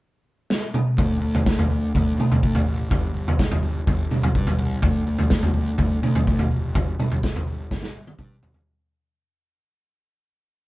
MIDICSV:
0, 0, Header, 1, 3, 480
1, 0, Start_track
1, 0, Key_signature, -1, "minor"
1, 0, Tempo, 479233
1, 987, Time_signature, 4, 2, 24, 8
1, 10689, End_track
2, 0, Start_track
2, 0, Title_t, "Picked electric bass"
2, 0, Program_c, 0, 34
2, 981, Note_on_c, 0, 38, 86
2, 1152, Note_off_c, 0, 38, 0
2, 1208, Note_on_c, 0, 38, 88
2, 1384, Note_off_c, 0, 38, 0
2, 1462, Note_on_c, 0, 38, 86
2, 1633, Note_off_c, 0, 38, 0
2, 1699, Note_on_c, 0, 38, 91
2, 1872, Note_off_c, 0, 38, 0
2, 1947, Note_on_c, 0, 38, 84
2, 2117, Note_off_c, 0, 38, 0
2, 2173, Note_on_c, 0, 38, 82
2, 2348, Note_off_c, 0, 38, 0
2, 2434, Note_on_c, 0, 38, 87
2, 2602, Note_off_c, 0, 38, 0
2, 2663, Note_on_c, 0, 33, 99
2, 2912, Note_off_c, 0, 33, 0
2, 2912, Note_on_c, 0, 31, 86
2, 3081, Note_off_c, 0, 31, 0
2, 3138, Note_on_c, 0, 31, 83
2, 3312, Note_off_c, 0, 31, 0
2, 3394, Note_on_c, 0, 31, 96
2, 3563, Note_off_c, 0, 31, 0
2, 3626, Note_on_c, 0, 31, 88
2, 3798, Note_off_c, 0, 31, 0
2, 3878, Note_on_c, 0, 31, 89
2, 4046, Note_off_c, 0, 31, 0
2, 4112, Note_on_c, 0, 31, 83
2, 4282, Note_off_c, 0, 31, 0
2, 4355, Note_on_c, 0, 43, 86
2, 4524, Note_off_c, 0, 43, 0
2, 4589, Note_on_c, 0, 36, 89
2, 4760, Note_off_c, 0, 36, 0
2, 4835, Note_on_c, 0, 38, 86
2, 5005, Note_off_c, 0, 38, 0
2, 5074, Note_on_c, 0, 38, 86
2, 5244, Note_off_c, 0, 38, 0
2, 5319, Note_on_c, 0, 38, 88
2, 5487, Note_off_c, 0, 38, 0
2, 5542, Note_on_c, 0, 38, 88
2, 5716, Note_off_c, 0, 38, 0
2, 5796, Note_on_c, 0, 38, 89
2, 5966, Note_off_c, 0, 38, 0
2, 6030, Note_on_c, 0, 38, 81
2, 6201, Note_off_c, 0, 38, 0
2, 6278, Note_on_c, 0, 38, 85
2, 6446, Note_off_c, 0, 38, 0
2, 6511, Note_on_c, 0, 29, 91
2, 6764, Note_off_c, 0, 29, 0
2, 6764, Note_on_c, 0, 31, 94
2, 6930, Note_off_c, 0, 31, 0
2, 6999, Note_on_c, 0, 31, 79
2, 7167, Note_off_c, 0, 31, 0
2, 7242, Note_on_c, 0, 31, 88
2, 7408, Note_off_c, 0, 31, 0
2, 7481, Note_on_c, 0, 31, 88
2, 7648, Note_off_c, 0, 31, 0
2, 7727, Note_on_c, 0, 31, 92
2, 7891, Note_off_c, 0, 31, 0
2, 7966, Note_on_c, 0, 31, 78
2, 8130, Note_off_c, 0, 31, 0
2, 8200, Note_on_c, 0, 43, 88
2, 8366, Note_off_c, 0, 43, 0
2, 8445, Note_on_c, 0, 31, 95
2, 8609, Note_off_c, 0, 31, 0
2, 10689, End_track
3, 0, Start_track
3, 0, Title_t, "Drums"
3, 504, Note_on_c, 9, 38, 70
3, 604, Note_off_c, 9, 38, 0
3, 743, Note_on_c, 9, 47, 73
3, 843, Note_off_c, 9, 47, 0
3, 985, Note_on_c, 9, 36, 108
3, 986, Note_on_c, 9, 43, 79
3, 1086, Note_off_c, 9, 36, 0
3, 1086, Note_off_c, 9, 43, 0
3, 1349, Note_on_c, 9, 43, 82
3, 1450, Note_off_c, 9, 43, 0
3, 1465, Note_on_c, 9, 38, 87
3, 1467, Note_on_c, 9, 36, 118
3, 1566, Note_off_c, 9, 38, 0
3, 1567, Note_off_c, 9, 36, 0
3, 1591, Note_on_c, 9, 43, 88
3, 1691, Note_off_c, 9, 43, 0
3, 1953, Note_on_c, 9, 36, 105
3, 1959, Note_on_c, 9, 43, 83
3, 2053, Note_off_c, 9, 36, 0
3, 2060, Note_off_c, 9, 43, 0
3, 2201, Note_on_c, 9, 47, 78
3, 2301, Note_off_c, 9, 47, 0
3, 2320, Note_on_c, 9, 43, 82
3, 2320, Note_on_c, 9, 47, 77
3, 2420, Note_off_c, 9, 43, 0
3, 2420, Note_off_c, 9, 47, 0
3, 2435, Note_on_c, 9, 36, 100
3, 2535, Note_off_c, 9, 36, 0
3, 2553, Note_on_c, 9, 43, 83
3, 2654, Note_off_c, 9, 43, 0
3, 2915, Note_on_c, 9, 36, 109
3, 2917, Note_on_c, 9, 43, 87
3, 3016, Note_off_c, 9, 36, 0
3, 3017, Note_off_c, 9, 43, 0
3, 3285, Note_on_c, 9, 43, 87
3, 3385, Note_off_c, 9, 43, 0
3, 3398, Note_on_c, 9, 36, 110
3, 3399, Note_on_c, 9, 38, 79
3, 3498, Note_off_c, 9, 36, 0
3, 3499, Note_off_c, 9, 38, 0
3, 3521, Note_on_c, 9, 43, 92
3, 3621, Note_off_c, 9, 43, 0
3, 3879, Note_on_c, 9, 36, 106
3, 3880, Note_on_c, 9, 43, 82
3, 3979, Note_off_c, 9, 36, 0
3, 3980, Note_off_c, 9, 43, 0
3, 4119, Note_on_c, 9, 47, 67
3, 4219, Note_off_c, 9, 47, 0
3, 4242, Note_on_c, 9, 43, 88
3, 4242, Note_on_c, 9, 47, 76
3, 4342, Note_off_c, 9, 43, 0
3, 4342, Note_off_c, 9, 47, 0
3, 4358, Note_on_c, 9, 36, 110
3, 4458, Note_off_c, 9, 36, 0
3, 4478, Note_on_c, 9, 43, 83
3, 4578, Note_off_c, 9, 43, 0
3, 4831, Note_on_c, 9, 43, 86
3, 4837, Note_on_c, 9, 36, 117
3, 4931, Note_off_c, 9, 43, 0
3, 4937, Note_off_c, 9, 36, 0
3, 5194, Note_on_c, 9, 43, 88
3, 5294, Note_off_c, 9, 43, 0
3, 5310, Note_on_c, 9, 38, 84
3, 5317, Note_on_c, 9, 36, 114
3, 5410, Note_off_c, 9, 38, 0
3, 5418, Note_off_c, 9, 36, 0
3, 5437, Note_on_c, 9, 43, 89
3, 5537, Note_off_c, 9, 43, 0
3, 5789, Note_on_c, 9, 43, 82
3, 5797, Note_on_c, 9, 36, 104
3, 5890, Note_off_c, 9, 43, 0
3, 5898, Note_off_c, 9, 36, 0
3, 6042, Note_on_c, 9, 47, 71
3, 6142, Note_off_c, 9, 47, 0
3, 6164, Note_on_c, 9, 43, 83
3, 6164, Note_on_c, 9, 47, 76
3, 6265, Note_off_c, 9, 43, 0
3, 6265, Note_off_c, 9, 47, 0
3, 6284, Note_on_c, 9, 36, 110
3, 6384, Note_off_c, 9, 36, 0
3, 6401, Note_on_c, 9, 43, 82
3, 6501, Note_off_c, 9, 43, 0
3, 6763, Note_on_c, 9, 43, 83
3, 6764, Note_on_c, 9, 36, 107
3, 6864, Note_off_c, 9, 36, 0
3, 6864, Note_off_c, 9, 43, 0
3, 7007, Note_on_c, 9, 47, 79
3, 7107, Note_off_c, 9, 47, 0
3, 7127, Note_on_c, 9, 43, 83
3, 7228, Note_off_c, 9, 43, 0
3, 7245, Note_on_c, 9, 36, 116
3, 7251, Note_on_c, 9, 38, 81
3, 7346, Note_off_c, 9, 36, 0
3, 7352, Note_off_c, 9, 38, 0
3, 7373, Note_on_c, 9, 43, 84
3, 7473, Note_off_c, 9, 43, 0
3, 7724, Note_on_c, 9, 36, 106
3, 7727, Note_on_c, 9, 38, 63
3, 7824, Note_off_c, 9, 36, 0
3, 7827, Note_off_c, 9, 38, 0
3, 7841, Note_on_c, 9, 38, 61
3, 7941, Note_off_c, 9, 38, 0
3, 8086, Note_on_c, 9, 48, 67
3, 8186, Note_off_c, 9, 48, 0
3, 8198, Note_on_c, 9, 47, 84
3, 8200, Note_on_c, 9, 36, 115
3, 8298, Note_off_c, 9, 47, 0
3, 8300, Note_off_c, 9, 36, 0
3, 8441, Note_on_c, 9, 43, 91
3, 8542, Note_off_c, 9, 43, 0
3, 8556, Note_on_c, 9, 43, 83
3, 8656, Note_off_c, 9, 43, 0
3, 10689, End_track
0, 0, End_of_file